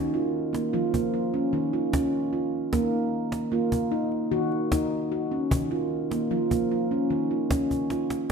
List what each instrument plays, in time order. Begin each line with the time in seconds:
Already playing: handpan D#3 C#4
0.14 handpan F4
0.53 handpan A#3, cajon slap
0.73 handpan F3 F4, cajon slap
0.94 handpan A#3, cajon bass
1.14 handpan F4
1.34 handpan C#4, cajon slap
1.53 handpan D#3
1.73 handpan F4, cajon slap
1.93 handpan C#4, cajon bass, cajon slap
2.33 handpan F4
2.73 handpan D#3 A#3, cajon bass, cajon slap
3.32 cajon slap
3.52 handpan A#3 F4, cajon slap
3.72 cajon bass
3.92 handpan D#4
4.12 cajon slap
4.31 handpan D#3 F#4
4.52 cajon slap
4.72 handpan D#4, cajon bass, cajon slap
5.12 handpan F#4
5.31 handpan C#4
5.51 handpan D#3, cajon bass
5.71 handpan F4, cajon slap
6.11 handpan A#3, cajon slap
6.31 handpan F3 F4, cajon slap
6.51 handpan A#3, cajon bass
6.71 handpan F4, cajon slap
6.91 handpan C#4
7.10 handpan D#3, cajon slap
7.31 handpan F4
7.51 handpan C#4, cajon bass, cajon slap
7.71 cajon bass
7.90 handpan F4, cajon slap
8.10 cajon slap